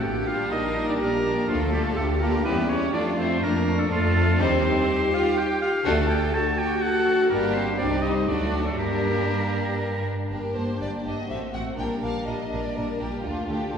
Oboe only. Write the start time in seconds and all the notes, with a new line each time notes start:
0.02 G5
0.27 F5
0.51 D#5
0.89 D5
1.00 A#4
1.49 F4
1.73 G4
1.96 A4
2.21 A#4
2.45 B4
2.69 C#5
2.93 D5
3.19 C5
3.43 A#4
3.79 A4
3.92 F4
4.41 C5
5.14 F5
5.38 G5
5.61 F5
5.86 F#5
6.10 G5
6.34 A5
6.58 G5
6.82 F#5
7.30 A#4
7.54 C5
7.78 D5
8.02 D#5
8.27 D5
8.66 A4
8.78 G4